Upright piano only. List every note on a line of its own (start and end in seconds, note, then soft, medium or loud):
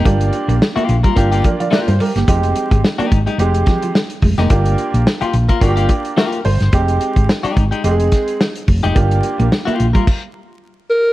0.05 0.57 A#3 medium
0.05 0.57 D4 medium
0.05 0.57 F4 medium
0.05 0.57 G4 medium
1.16 1.68 A#3 medium
1.16 1.68 D4 medium
1.16 1.68 F4 medium
1.16 1.45 G4 medium
1.44 1.59 A#4 soft
1.44 1.59 D5 medium
1.60 1.71 D5 medium
1.60 1.71 F5 medium
1.72 1.87 A#4 medium
1.72 1.87 D5 medium
1.88 1.99 C5 medium
2.00 2.14 G4 medium
2.00 2.15 A#4 medium
2.16 2.27 G4 medium
2.28 2.79 G#3 medium
2.28 2.79 C4 medium
2.28 2.80 D#4 medium
2.28 2.80 G4 loud
3.39 3.90 G#3 medium
3.39 3.91 C4 medium
3.39 3.91 D#4 medium
3.39 3.91 G4 loud
4.50 5.02 A#3 medium
4.50 5.02 D4 medium
4.50 5.02 F4 medium
4.50 5.02 G4 medium
5.61 6.13 A#3 medium
5.61 6.13 D4 medium
5.61 6.13 F4 medium
5.61 5.69 F#4 medium
5.69 5.88 G4 medium
5.90 6.15 G4 medium
6.17 6.43 A#4 medium
6.45 6.71 C5 medium
6.73 7.25 G#3 medium
6.73 7.25 C4 medium
6.73 7.25 D#4 medium
6.73 7.25 G4 loud
7.84 8.36 G#3 medium
7.84 8.36 C4 medium
7.84 8.36 D#4 medium
7.84 7.92 G4 medium
7.91 8.39 G#4 loud
8.95 9.47 A#3 medium
8.95 9.47 D4 medium
8.95 9.47 F4 medium
8.95 9.48 G4 loud